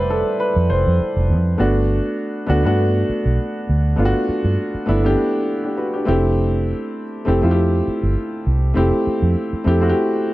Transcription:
Already playing: F1 G3 A3 E4 B4 C5 D5 E5 F#5 G5 A5
0.10 A4
0.40 B4
0.56 F2
0.70 F1 C5
0.87 F2
1.01 muted fingered electric bass stroke
1.16 F1
1.30 F2
1.58 G1 A3 B3 D4 F#4
2.46 D2 A3 B3 D4 F#4
2.63 G2 A3 B3 D4 F#4
3.09 muted fingered electric bass stroke
3.26 B1
3.69 D2
3.96 G1 A3 B3 D4 F4
4.05 F#4
4.29 muted fingered electric bass stroke
4.44 G2
4.74 muted fingered electric bass stroke
4.86 G1 A3 B3 D4 E4
5.03 A3 B3 D4 G4
5.64 D4 G4
5.77 F#4 B4
5.94 D4 G4
6.05 F1 A3 C4 E4 G4
7.25 F1 A3 C4 E4 G4
7.41 F2 A3 C4 E4 F4
7.51 G4
7.88 muted fingered electric bass stroke
8.03 G1
8.47 C2
8.74 F1 A3 C4 E4 G4
9.07 muted fingered electric bass stroke
9.22 F2
9.53 muted fingered electric bass stroke
9.64 F2 A3 C4 E4 G4
9.80 A3 C4 E4 F#4
9.89 G4

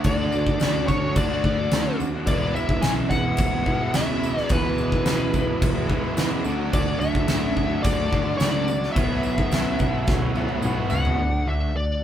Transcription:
Already playing: D3 A3 D4 F#4 A4 D5
0.04 D2 D3 A3 D4 D5, kick, crash
0.08 F#4
0.32 D2 D3 A3, tambourine
0.37 D4 F#4
0.47 D4 F#4, kick
0.51 A3
0.60 D2 D3 A3, snare, tambourine, crash
0.64 D4 F#4
0.87 D2 D3 A3 C#5, kick, tambourine
0.91 D4 F#4
1.03 A3 D4 F#4
1.16 D2 D3 A3 D4 D5, kick, tambourine, crash
1.30 A3 D4 F#4
1.44 D2 D3 A3 D4 F#4, kick
1.59 A3 D4 F#4
1.71 D2 D3 A3 D4 F#4, snare, tambourine, crash
1.87 A3 D4 F#4
2.00 D#2, tambourine
2.13 A3 D4 F#4
2.26 E1 E2 B2 E3 G#3 B3 E4 G#4 B4 D5 E5, kick, crash
2.31 E3
2.55 E1 E3 G#3 B3 E4 E5, tambourine
2.69 G#3 B3 E4, kick
2.82 B1 E3 G#3 B3 E4 G#5, snare, tambourine, crash
3.10 E1 E3 G#3 B3 E4 F#5, kick, tambourine
3.27 G#3 B3 E4
3.37 E1, kick, tambourine, crash
3.53 G#3 B3 E4
3.66 E1 B2 E3 G#3 B3 E4, kick
3.70 E2
3.80 G#3 B3 E4
3.94 E1 E2 B2 E3 G#3 B3 E4 E5, snare, tambourine, crash
3.98 E3
4.09 G#3 B3 E4
4.23 tambourine
4.36 G#3 B3 E4, snare
4.41 D5
4.49 E1 E2 B2 E3 G#3 B3 E4 G#4 B4 E5, kick, crash
4.55 E3
4.78 E1 E3 G#3 B3 E4, tambourine
4.91 G#3 B3 E4, kick
5.05 E1 E3 G#3 B3 E4, snare, tambourine, crash
5.34 E1 E3 G#3 B3 E4, kick, tambourine
5.48 G#3 B3 E4
5.62 E1, kick, tambourine, crash
5.74 G#3 B3 E4
5.87 E1 E3 G#3 B3 E4, kick
5.92 E2 B2
6.02 G#3 B3 E4
6.15 E2 E3 G#3 B3 E4, snare, tambourine, crash
6.19 B2 E3
6.30 G#3 B3 E4
6.44 D2 D3 F#3 A3 D4 F#4 A4 D5, tambourine
6.48 D4
6.58 A3 D4 F#4
6.72 D2 D3 F#3 A3 D4 F#4 D5, kick, crash
7.00 D2 F#3 A3 D4 F#4 E5, tambourine
7.15 A3 D4 F#4, kick
7.27 A1 D3 F#3 A3 D4 F#4, snare, tambourine, crash
7.56 D2 F#3 A3 D4 F#4, kick
7.69 A3 D4 F#4
7.83 D2 D3 A3 D5, kick, tambourine, crash
7.88 D4
7.97 A3 D4 F#4
8.09 D2 F#3 A3 D4 F#4, kick
8.13 D3 A3 D4
8.23 A3 D4 F#4
8.36 C#2 D3 F#3 A3 D4 F#4 D5, tambourine
8.40 snare, crash
8.53 A3 D4 F#4
8.68 tambourine
8.80 A3 D4 F#4, snare
8.92 B1 B2 E3 F4 E5
8.96 F#3 B3 E4 F#4 G4 C5 F5, kick, crash
9.14 E4 F#4 B4 E5
9.23 B1 E3 B3 E4 F#4, tambourine
9.37 B3 E4 F#4, kick
9.51 B1 B2 E3 B3 E4 F#4, snare, tambourine, crash
9.79 B1 E3 B3 E4 F#4, kick, tambourine
9.94 B3 E4 F#4
10.07 B1, kick, snare, tambourine
10.20 B3 E4 F#4
10.34 B1 B2 E3 F#3 B3 E4 F#4, high tom, tambourine
10.49 B3 E4 F#4, high tom
10.62 B1 B2 E3 F#3 B3 E4 F#4, mid tom, tambourine
10.77 B3 E4 F#4
10.90 C#2 F#5, floor tom, tambourine
11.05 B3 E4 F#4, floor tom
11.17 D2 D3 A3 D4 F#4 A4 F#5
11.46 D2 D3 A3 D4 E5
11.75 D2 D5

